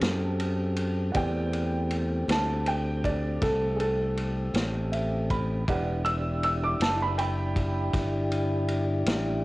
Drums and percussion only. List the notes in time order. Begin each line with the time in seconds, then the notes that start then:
0.01 snare, ride
0.40 ride
0.76 ride
1.14 kick, ride
1.53 ride
1.91 ride
2.29 snare, ride
2.66 ride
3.04 kick, ride
3.42 kick, snare, ride
3.80 ride
4.17 ride
4.54 snare, ride
4.93 ride
5.30 kick, ride
5.68 kick, ride
6.05 ride
6.43 ride
6.81 snare, ride
7.19 ride
7.56 kick, ride
7.94 kick, snare, ride
8.32 ride
8.68 ride
9.06 snare, ride